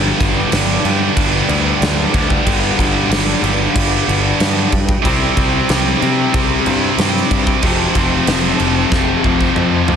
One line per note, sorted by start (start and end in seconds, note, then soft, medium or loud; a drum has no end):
0.00 0.11 G1 loud
0.00 0.87 G2 medium
0.00 0.83 D3 medium
0.00 0.86 G3 medium
0.00 0.85 B3 medium
0.00 0.85 D4 loud
0.00 5.00 D4 medium
0.00 5.00 B4 medium
0.00 7.59 G5 medium
0.20 0.44 G1 medium
0.20 kick loud
0.20 crash medium
0.51 0.76 G1 medium
0.51 2.11 G2 medium
0.51 2.12 D3 medium
0.51 2.14 G3 medium
0.51 snare loud
0.51 crash loud
0.85 1.08 G2 medium
0.85 2.12 G2 medium
0.85 2.13 D3 medium
0.85 2.15 G3 medium
0.85 2.12 B3 medium
0.85 2.12 D4 medium
0.85 crash medium
1.17 1.41 G1 medium
1.17 kick loud
1.17 crash medium
1.49 1.72 D2 medium
1.49 crash medium
1.81 2.05 D2 medium
1.81 snare loud
1.81 crash medium
2.14 2.38 D2 loud
2.14 3.41 G2 medium
2.14 3.41 D3 loud
2.14 3.44 G3 loud
2.14 3.42 B3 loud
2.14 3.42 D4 loud
2.14 kick medium
2.14 crash medium
2.30 kick loud
2.46 2.70 G1 medium
2.46 kick loud
2.46 crash medium
2.79 3.02 G1 medium
2.79 kick medium
2.79 crash medium
3.09 3.33 G1 loud
3.09 4.69 G2 medium
3.09 4.70 D3 medium
3.09 4.71 G3 medium
3.09 snare loud
3.09 crash loud
3.42 3.66 G1 medium
3.42 4.71 G2 medium
3.42 4.71 D3 medium
3.42 4.71 G3 medium
3.42 4.71 B3 medium
3.42 4.70 D4 loud
3.42 crash medium
3.76 4.00 G1 medium
3.76 kick loud
3.76 crash medium
4.08 4.32 G1 medium
4.08 crash medium
4.40 4.64 G2 medium
4.40 snare loud
4.40 crash medium
4.72 4.96 G2 loud
4.72 kick medium
4.72 crash medium
4.89 kick loud
5.03 5.29 C2 loud
5.03 6.31 C3 medium
5.03 6.32 G3 loud
5.03 6.34 C4 loud
5.03 7.60 E4 medium
5.03 6.32 E4 loud
5.03 9.96 C5 medium
5.03 kick loud
5.03 crash medium
5.37 5.60 C2 loud
5.37 kick medium
5.37 crash medium
5.69 5.93 C2 loud
5.69 snare loud
5.69 crash medium
6.00 6.26 C3 loud
6.00 7.61 C3 medium
6.00 7.61 G3 medium
6.00 9.50 C4 medium
6.00 crash medium
6.34 6.58 C2 medium
6.34 7.61 C3 medium
6.34 7.61 G3 medium
6.34 7.64 C4 medium
6.34 7.62 E4 medium
6.34 kick loud
6.34 crash medium
6.66 6.90 G2 loud
6.66 crash medium
6.98 7.22 G2 loud
6.98 snare loud
6.98 crash medium
7.16 snare soft
7.31 7.54 G2 medium
7.31 kick medium
7.31 crash medium
7.47 kick loud
7.62 7.87 F1 medium
7.62 8.90 F2 medium
7.62 8.91 C3 loud
7.62 8.91 F3 medium
7.62 8.91 A3 loud
7.62 8.92 C4 loud
7.62 9.96 F4 medium
7.62 9.96 A5 medium
7.62 kick loud
7.62 crash medium
7.95 8.19 F1 medium
7.95 kick medium
7.95 crash medium
8.27 8.51 F1 loud
8.27 snare loud
8.27 crash medium
8.58 8.84 F1 medium
8.58 9.96 F2 medium
8.58 9.96 C3 medium
8.58 9.96 F3 medium
8.58 crash medium
8.91 9.16 F1 medium
8.91 9.96 F2 medium
8.91 9.96 C3 medium
8.91 9.96 F3 medium
8.91 9.96 A3 medium
8.91 9.96 C4 medium
8.91 kick loud
8.91 snare medium
9.24 9.49 F1 medium
9.24 kick medium
9.41 kick medium
9.56 9.80 F2 medium
9.56 mid tom medium
9.88 9.96 F2 loud
9.88 floor tom loud